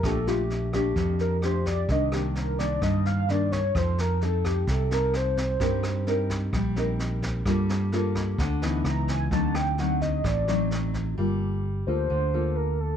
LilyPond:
<<
  \new Staff \with { instrumentName = "Soft synth lead" } { \time 4/4 \key g \minor \tempo 4 = 129 a'8 f'8 r4. bes'8 c''8 d''8 | ees''8 g'8 bes'8 d''8 ees''8 f''8 d''8 cis''8 | c''8 bes'8 a'8 g'8 a'8 bes'8 c''8 c''8~ | c''2 r2 |
r2. bes''8 gis''8 | a''8 g''8 fis''8 ees''8 d''4. r8 | r4. c''4. bes'8 a'8 | }
  \new Staff \with { instrumentName = "Nylon-string guitar" } { \time 4/4 \key g \minor << { <a d' g'>8 <a d' g'>4 <a d' g'>4. <a d' g'>4 | <ees bes d'>8 <ees bes d'>4 <ees bes d'>4. <ees bes d'>8 r8 | <c' ees' a'>4 <c' ees' a'>4. <c' ees' a'>4. | <c' ees' bes'>4 <c' ees' bes'>4 r8 <c' ees' bes'>4. |
<bes f' a'>4 <bes f' a'>4. <e b ees'>4. | <fis c' ees'>4 <fis c' ees'>4. <fis c' ees'>4. | <bes f' a'>4 r8 <bes f' a'>4 <bes f' a'>4. | } \\ { bes,2 f,2 | c2 g,2 | f2 c2 | g2 g2 |
g2 d4 r4 | d2 a,2 | g2 d2 | } >> }
  \new Staff \with { instrumentName = "Fingered electric bass" } { \clef bass \time 4/4 \key g \minor bes,,2 f,2 | c,2 g,2 | f,2 c,2 | g,2 bes,,2 |
g,2 d,4 cis,4 | d,2 a,,2 | g,,4. d,8 d,2 | }
  \new DrumStaff \with { instrumentName = "Drums" } \drummode { \time 4/4 <bd ss sn>8 sn8 sn8 <bd ss sn>8 <bd sn>8 sn8 <ss sn>8 <bd sn>8 | <bd sn>8 <ss sn>8 sn8 <bd sn>8 <bd ss sn>8 sn8 sn8 <bd sn>8 | <bd ss sn>8 sn8 sn8 <bd ss sn>8 <bd sn>8 sn8 <ss sn>8 <bd sn>8 | <bd sn>8 <ss sn>8 sn8 <bd sn>8 <bd ss sn>8 sn8 sn8 <bd sn>8 |
<bd ss sn>8 sn8 sn8 <bd ss sn>8 <bd sn>8 sn8 <ss sn>8 <bd sn>8 | <bd sn>8 <ss sn>8 sn8 <bd sn>8 <bd ss sn>8 sn8 sn8 <bd sn>8 | r4 r4 r4 r4 | }
>>